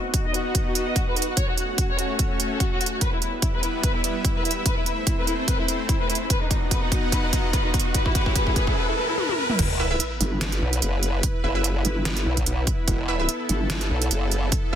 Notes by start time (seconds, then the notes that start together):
Already playing: B3 D#4 F#4 D#5 F#5
0.14 F#4, kick, closed hi-hat
0.25 D#5
0.34 F#4, closed hi-hat
0.46 F#4
0.55 kick, closed hi-hat
0.66 F#4
0.75 F#4, closed hi-hat
0.87 D#5
0.96 F#4, kick, closed hi-hat
1.08 B4
1.16 F#4, closed hi-hat
1.22 closed hi-hat
1.28 F#4
1.37 A3 C#4 C#5, kick, closed hi-hat
1.48 F#4
1.58 F#4, closed hi-hat
1.78 F#4, kick, closed hi-hat
1.89 C#5
1.99 F#4, closed hi-hat
2.10 F#4
2.19 kick, closed hi-hat
2.31 F#4
2.40 F#4, closed hi-hat
2.51 A4
2.60 F#4, kick, closed hi-hat
2.71 F#4
2.81 F#4, closed hi-hat
2.86 closed hi-hat
2.92 F#4
3.01 G3 B3 E4 B4 E5, kick, closed hi-hat, riser
3.13 E4
3.22 E4, closed hi-hat
3.42 E4, kick, closed hi-hat
3.54 B4
3.63 E4, closed hi-hat
3.74 E4
3.83 B4, kick, closed hi-hat
3.95 E4
4.04 E4, closed hi-hat
4.25 E4, kick, closed hi-hat
4.36 B4
4.45 E4, closed hi-hat
4.51 closed hi-hat
4.56 E4
4.66 A3 C4 B4 C5, kick, closed hi-hat
4.77 E4
4.86 E4, closed hi-hat
5.07 E4, kick, closed hi-hat
5.18 B4
5.27 E4, closed hi-hat
5.39 E4
5.48 B4, kick, closed hi-hat
5.59 E4
5.68 E4, closed hi-hat
5.89 E4, kick, closed hi-hat
6.00 B4
6.09 E4, closed hi-hat
6.15 closed hi-hat
6.21 E4
6.30 B3 D#4 F#4 B4 D#5 F#5, kick, closed hi-hat
6.41 D#4
6.50 D#4, kick, closed hi-hat
6.71 B4, kick, closed hi-hat
6.82 D#4
6.92 D#4, kick, closed hi-hat
7.12 B4, kick, closed hi-hat
7.23 D#4
7.33 D#4, kick, closed hi-hat
7.53 B4, kick, closed hi-hat
7.65 D#4
7.74 D#4, kick, closed hi-hat
7.79 closed hi-hat
7.94 A3 C#4 F#4 B4 C#5 F#5, kick, closed hi-hat
8.06 E4, kick
8.15 B4, kick, closed hi-hat
8.26 E4, kick
8.36 B4, kick, closed hi-hat
8.47 E4, kick
8.56 B4, kick, closed hi-hat
8.67 E4, kick
8.76 B4
8.88 E4
8.97 B4
9.08 E4
9.18 B4, high tom
9.29 E4, high tom
9.38 B4
9.49 E4, mid tom
9.59 E1 B3 E4 B4, kick, closed hi-hat, crash, sub drop
9.79 E4 B4 E5
9.91 E4 B4 E5
10.00 closed hi-hat
10.20 G1, closed hi-hat
10.41 snare, closed hi-hat
10.52 closed hi-hat
10.62 B1
10.73 closed hi-hat
10.82 F#1, closed hi-hat
11.03 closed hi-hat
11.23 kick, closed hi-hat
11.44 F#1 E4 B4 E5
11.55 E4 B4 E5
11.64 closed hi-hat
11.85 G1, closed hi-hat
12.05 snare, closed hi-hat
12.17 closed hi-hat
12.26 B1
12.37 kick, closed hi-hat
12.46 B1, closed hi-hat
12.67 kick, closed hi-hat
12.88 E1 A4, kick, closed hi-hat
13.08 E4 B4 E5
13.19 E4 B4 E5
13.29 closed hi-hat
13.49 G1, closed hi-hat
13.70 snare, closed hi-hat
13.81 closed hi-hat
13.90 B1
14.02 closed hi-hat
14.11 F#1, closed hi-hat
14.31 closed hi-hat
14.52 kick, closed hi-hat